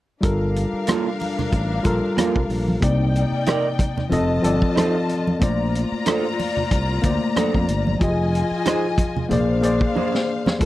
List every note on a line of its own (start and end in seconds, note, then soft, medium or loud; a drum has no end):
0.21 0.64 G1 medium
0.21 1.01 G3 medium
0.21 2.78 D4 medium
0.21 1.02 F4 medium
0.21 1.03 A4 medium
0.21 2.78 A#4 medium
0.21 2.78 F5 medium
0.21 kick medium
0.21 closed hi-hat medium
0.25 1.03 A#4 medium
0.56 closed hi-hat medium
0.56 muted conga soft
0.73 muted fingered electric bass stroke soft
0.87 1.07 A#3 medium
0.87 1.08 F4 medium
0.87 1.08 A4 medium
0.87 cross-stick medium
0.87 closed hi-hat medium
0.87 high conga medium
1.20 open hi-hat soft
1.20 muted conga soft
1.39 cross-stick soft
1.39 low conga medium
1.52 1.79 A1 medium
1.52 kick medium
1.52 closed hi-hat medium
1.83 2.00 A#1 medium
1.83 2.43 G3 medium
1.83 2.44 F4 medium
1.83 2.44 A4 medium
1.83 2.45 A#4 medium
1.83 kick medium
1.83 closed hi-hat medium
1.83 muted conga soft
2.17 2.37 A#3 medium
2.17 2.37 F4 medium
2.17 2.37 A4 medium
2.17 cross-stick loud
2.17 closed hi-hat medium
2.17 high conga medium
2.36 2.48 C2 medium
2.36 kick medium
2.50 2.76 A#1 medium
2.50 open hi-hat soft
2.68 high conga medium
2.80 3.23 C2 medium
2.80 3.60 C3 medium
2.80 3.61 A#3 medium
2.80 3.61 D#4 medium
2.80 4.09 D#4 medium
2.80 4.09 D5 medium
2.80 3.62 D5 medium
2.80 4.09 G5 medium
2.80 kick medium
2.80 closed hi-hat medium
3.16 closed hi-hat medium
3.16 muted conga soft
3.32 muted fingered electric bass stroke soft
3.46 3.66 D#4 medium
3.46 3.67 A#4 medium
3.46 3.67 D5 medium
3.46 cross-stick medium
3.46 closed hi-hat medium
3.46 high conga medium
3.79 kick medium
3.79 closed hi-hat medium
3.79 muted conga medium
3.97 cross-stick soft
3.97 low conga medium
4.09 4.38 F1 medium
4.09 4.37 F3 medium
4.09 4.38 C4 medium
4.09 5.39 F4 medium
4.09 4.38 A4 medium
4.09 5.39 D#5 medium
4.09 4.39 D#5 medium
4.09 5.39 A5 medium
4.09 closed hi-hat medium
4.09 low conga medium
4.42 4.59 G1 medium
4.42 5.02 F3 medium
4.42 5.03 C4 medium
4.42 5.04 A4 medium
4.42 5.04 D5 medium
4.42 closed hi-hat medium
4.42 muted conga soft
4.62 kick medium
4.76 4.96 D#4 medium
4.76 4.96 A4 medium
4.76 4.96 C5 medium
4.76 cross-stick medium
4.76 closed hi-hat medium
4.76 high conga medium
5.09 closed hi-hat medium
5.27 high conga medium
5.39 5.83 A#1 medium
5.39 6.20 A3 medium
5.39 6.20 A#3 medium
5.39 7.97 F4 medium
5.39 6.21 C5 medium
5.39 7.97 D5 medium
5.39 6.22 D5 medium
5.39 7.97 A#5 medium
5.39 kick medium
5.39 closed hi-hat medium
5.75 closed hi-hat medium
5.92 muted fingered electric bass stroke soft
6.06 6.26 D4 medium
6.06 6.26 A4 medium
6.06 6.26 C5 medium
6.06 cross-stick medium
6.06 closed hi-hat medium
6.06 high conga medium
6.39 open hi-hat soft
6.39 muted conga medium
6.57 low conga medium
6.71 6.98 C2 medium
6.71 kick medium
6.71 closed hi-hat medium
7.02 7.18 D2 medium
7.02 7.63 A3 medium
7.02 7.62 A#3 medium
7.02 7.63 C5 medium
7.02 7.64 D5 medium
7.02 kick medium
7.02 closed hi-hat medium
7.02 muted conga soft
7.36 7.56 D4 medium
7.36 7.56 A4 medium
7.36 7.56 C5 medium
7.36 cross-stick medium
7.36 closed hi-hat medium
7.36 high conga medium
7.54 7.66 F2 medium
7.54 kick medium
7.68 7.95 G1 medium
7.68 closed hi-hat medium
7.87 high conga medium
7.99 8.42 F1 medium
7.99 8.80 F3 medium
7.99 8.81 F4 medium
7.99 9.28 F4 medium
7.99 8.09 G4 medium
7.99 9.28 D#5 medium
7.99 9.28 G#5 medium
7.99 kick medium
7.99 closed hi-hat medium
8.04 8.82 D#5 medium
8.09 8.84 G#4 medium
8.34 closed hi-hat medium
8.34 muted conga soft
8.51 muted fingered electric bass stroke soft
8.65 8.85 D#4 medium
8.65 8.86 G#4 medium
8.65 8.86 C5 medium
8.65 cross-stick medium
8.65 closed hi-hat medium
8.65 high conga medium
8.98 kick medium
8.98 closed hi-hat medium
8.98 muted conga soft
9.17 low conga medium
9.29 9.84 A#1 medium
9.29 9.56 A#3 medium
9.29 10.58 D4 medium
9.29 9.57 G#4 medium
9.29 10.58 C5 medium
9.29 9.58 C5 medium
9.29 9.58 D5 medium
9.29 10.58 F5 medium
9.29 closed hi-hat medium
9.29 low conga medium
9.61 10.22 A#3 medium
9.61 10.22 G#4 medium
9.61 10.23 C5 medium
9.61 10.24 D5 medium
9.61 closed hi-hat medium
9.61 muted conga soft
9.81 kick medium
9.95 10.15 D4 medium
9.95 10.16 G#4 medium
9.95 10.16 C5 medium
9.95 high conga medium
10.15 snare soft
10.46 snare medium
10.46 high conga medium
10.59 10.65 G1 medium
10.59 10.65 G3 medium
10.59 10.65 F4 medium
10.59 10.65 A4 medium
10.59 10.65 A5 medium
10.59 kick medium
10.59 closed hi-hat medium